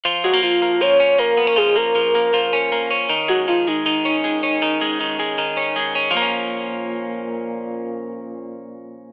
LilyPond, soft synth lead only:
\new Staff \with { instrumentName = "Soft synth lead" } { \time 4/4 \key fis \major \tempo 4 = 158 r8 fis'8 eis'4 cis''4 ais'4 | gis'8 ais'2. r8 | r8 fis'8 eis'8 dis'2~ dis'8~ | dis'2. r4 |
ais1~ | ais1 | }